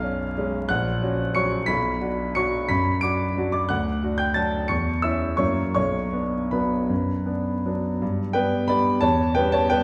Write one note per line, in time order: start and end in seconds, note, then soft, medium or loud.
0.00 0.72 B1 medium
0.00 0.33 C#4 soft
0.00 0.66 F5 medium
0.00 0.70 F6 medium
0.38 0.67 G#3 soft
0.38 0.67 C#4 soft
0.69 1.02 A#1 medium
0.69 1.32 F#5 medium
0.69 1.35 F#6 medium
1.02 1.32 C#4 soft
1.02 1.32 F#4 soft
1.35 1.66 F#3 soft
1.35 1.66 C#4 soft
1.35 1.66 F#4 soft
1.35 1.66 C#6 medium
1.35 1.68 C#7 medium
1.66 2.01 B1 medium
1.66 2.31 B5 medium
1.66 2.34 B6 medium
2.01 2.32 D4 soft
2.01 2.32 F#4 soft
2.35 2.66 F#3 soft
2.35 2.66 D4 soft
2.35 2.66 F#4 soft
2.35 2.67 C#6 medium
2.35 2.69 C#7 medium
2.69 3.01 F#2 medium
2.69 3.00 B5 medium
2.69 3.02 B6 medium
3.01 3.33 D4 soft
3.01 3.33 F#4 soft
3.01 3.50 D6 medium
3.01 3.53 D7 medium
3.37 3.67 F#3 soft
3.37 3.67 D4 soft
3.37 3.67 F#4 soft
3.52 3.69 D5 medium
3.52 3.69 D6 medium
3.69 4.02 D2 soft
3.69 4.16 F#5 medium
3.69 4.19 F#6 medium
4.03 4.33 D4 soft
4.03 4.34 F#4 soft
4.18 4.35 G5 medium
4.18 4.36 G6 medium
4.34 4.66 F#3 soft
4.34 4.66 D4 soft
4.34 4.66 F#4 soft
4.34 4.67 A5 medium
4.34 4.69 A6 medium
4.68 5.02 E2 soft
4.68 5.00 C#6 medium
4.68 5.02 C#7 medium
5.02 5.36 C#4 soft
5.02 5.36 E4 soft
5.02 5.37 E5 medium
5.02 5.39 E6 medium
5.37 5.75 F#2 soft
5.37 5.72 F#3 soft
5.37 5.72 A#3 soft
5.37 5.73 E4 soft
5.37 5.73 C#5 soft
5.37 5.73 C#6 medium
5.75 6.12 B1 soft
5.75 6.49 C#5 medium
5.75 6.52 C#6 medium
6.13 6.49 B3 soft
6.13 6.49 D4 soft
6.51 6.86 F#3 soft
6.51 6.86 B3 soft
6.51 6.87 D4 soft
6.51 7.80 B4 soft
6.51 7.83 B5 medium
6.90 7.25 F#2 soft
7.26 7.61 B3 soft
7.26 7.61 D4 soft
7.66 7.98 F#3 soft
7.66 7.98 B3 soft
7.66 7.99 D4 soft
8.02 8.34 G2 medium
8.33 8.66 G3 soft
8.33 8.66 B3 soft
8.33 8.66 D4 soft
8.33 8.67 B4 medium
8.33 8.69 G5 medium
8.68 8.99 G3 soft
8.68 9.00 B3 soft
8.68 9.00 D4 soft
8.68 9.00 D5 medium
8.68 9.02 B5 medium
9.01 9.35 E2 medium
9.01 9.34 C#5 medium
9.01 9.35 A5 medium
9.35 9.68 G3 soft
9.35 9.68 B3 soft
9.35 9.68 C#4 soft
9.35 9.52 B4 medium
9.35 9.53 G5 medium
9.52 9.70 C#5 medium
9.52 9.71 A5 medium
9.70 9.83 G3 soft
9.70 9.83 B3 soft
9.70 9.83 C#4 soft
9.70 9.83 B4 medium
9.70 9.83 G5 medium